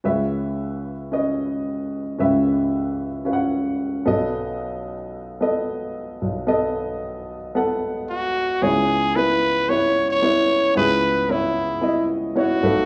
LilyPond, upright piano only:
<<
  \new Staff \with { instrumentName = "Upright piano" } { \time 4/4 \key cis \minor \tempo 4 = 112 <cis' b' e''>4. r8 <cis' b' dis''>4. r8 | <cis' b' e''>4. r8 <cis' b' eis'' fis''>4. <b a' dis''>8~ | <b a' dis''>4 r4 <b a' dis''>4. r8 | <b a' dis''>4. r8 <b a' fis''>4. r8 |
<b e' cis''>4 <b e' b'>4 <b e' cis''>4 <b e' cis''>4 | <b e' gis'>4 <b e' cis''>4 <b e' dis''>4 <b e' cis''>8 <a dis' b'>8 | }
  \new Staff \with { instrumentName = "Upright piano" } { \clef bass \time 4/4 \key cis \minor <cis, cis>1 | <cis, cis>2.~ <cis, cis>8 <b,, b,>8~ | <b,, b,>2.~ <b,, b,>8 <b,, b,>8~ | <b,, b,>2.~ <b,, b,>8 r8 |
<cis, cis>1 | <cis, cis>2.~ <cis, cis>8 <b,, b,>8 | }
>>